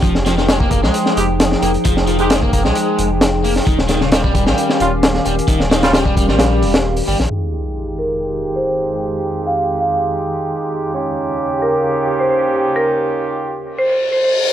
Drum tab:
HH |x-x-x-x-x-x-x-xx|x-xxx-x-x-x-x-o-|x-x-x-x-x-x-x-xx|x-xxx-x-x-ox-oo-|
SD |-oooo--o-o--oo--|-o--o--o----o--o|-oooo--o-o--oo--|-oooo--oo--o---o|
BD |o----oo---------|o----oo---------|o----oo---------|o----oo---------|

HH |----------------|----------------|----------------|----------------|
SD |----------------|----------------|----------------|----------------|
BD |----------------|----------------|----------------|----------------|